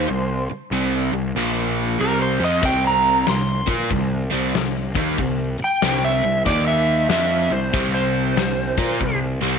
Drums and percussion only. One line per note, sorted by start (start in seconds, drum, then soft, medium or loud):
2.63 kick loud
2.63 open hi-hat medium
3.04 open hi-hat soft
3.27 snare medium
3.27 open hi-hat medium
3.68 kick medium
3.68 open hi-hat soft
3.79 snare soft
3.91 kick medium
3.91 open hi-hat medium
4.31 open hi-hat soft
4.55 snare loud
4.55 open hi-hat medium
4.95 kick medium
4.95 open hi-hat medium
5.18 kick medium
5.18 open hi-hat medium
5.58 open hi-hat medium
5.82 snare loud
5.82 open hi-hat medium
6.22 open hi-hat medium
6.46 kick medium
6.46 open hi-hat medium
6.87 open hi-hat soft
7.09 snare loud
7.09 open hi-hat medium
7.50 open hi-hat soft
7.74 kick loud
7.74 open hi-hat medium
8.15 open hi-hat soft
8.37 snare loud
8.37 open hi-hat medium
8.78 kick medium
8.78 open hi-hat soft
8.89 snare soft
9.01 kick medium
9.01 open hi-hat medium
9.41 open hi-hat soft